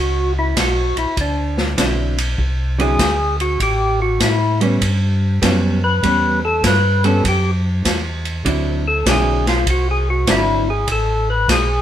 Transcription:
Already playing: C#2 F#4
0.39 E4
0.56 B1 F#4, kick, snare, hi-hat pedal, ride
0.96 B1 E4, ride
1.17 D2, kick, ride
1.21 D4
1.58 snare
1.77 B1 D3 F#3 C4 E4, kick, snare, hi-hat pedal, ride
2.18 ride
2.38 C2, kick
2.78 D3 F#3 C4 E4 G#4, ride
2.99 D2, kick, snare, hi-hat pedal, ride
3.40 F#4, ride
3.60 A1 G4, kick, ride
4.02 F#4
4.20 A2 E4, kick, snare, hi-hat pedal, ride
4.61 G3 B3 C#4, ride
4.81 G2, kick, ride
5.42 F#2 G3 B3 C#4, kick, snare, hi-hat pedal, ride
5.84 B4
6.03 E2 G3 B3 C#4, kick, ride
6.45 A4
6.63 G2 B4, kick, snare, hi-hat pedal, ride
7.04 G3 B3 C#4 A4, ride
7.24 F#2, kick, ride
7.28 G4
7.85 E2, kick, snare, hi-hat pedal, ride
8.25 ride
8.45 D2 D3 F#3 C4 E4, kick, ride
8.88 A4
9.06 B1 D3 F#3 C4 E4 G#4, kick, snare, hi-hat pedal, ride
9.47 F4, snare, ride
9.66 C2 F#4, kick, ride
9.91 G#4
10.10 F#4
10.27 G#1 D3 F#3 C4 E4, kick, snare, hi-hat pedal, ride
10.70 G#4
10.87 A1, kick, ride
10.92 A4
11.30 B4
11.48 B1 G#4, kick, snare, hi-hat pedal, ride

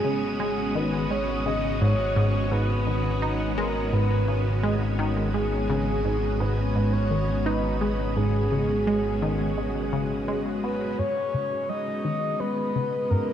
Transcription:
Already playing: G#1 G#3 B3 C#4 F#4 G#4 D#6
0.05 C#3
0.40 G#3
0.75 D#3 B4
1.10 G#3 C#5
1.46 C#3 D#5
1.81 G#2 C#5
2.16 G#2
2.51 G#2 B4
2.87 D#3
3.22 D#4
3.58 G#3 A#4
3.93 G#2 B4
4.28 C#3
4.64 G#3
4.99 D#3
5.34 G#3 G#4
5.70 C#3
6.05 G#2
6.40 G#2 B4
6.75 G#2
6.93 C#5
7.11 D#3
7.46 D#4 B4
7.81 G#3
8.16 G#2 G#4
8.52 C#3
8.87 G#3
9.22 D#3
9.58 G#3
9.93 C#3
10.28 G#3
10.64 B3 B4
10.99 G#2 G#3 B3 C#5
11.21 C#4 F#4
11.28 D#5
11.34 C#3
11.69 G#3 D#5
11.79 B3
12.05 D#3
12.40 G#3 B4
12.75 C#3
13.10 G#2 A#4

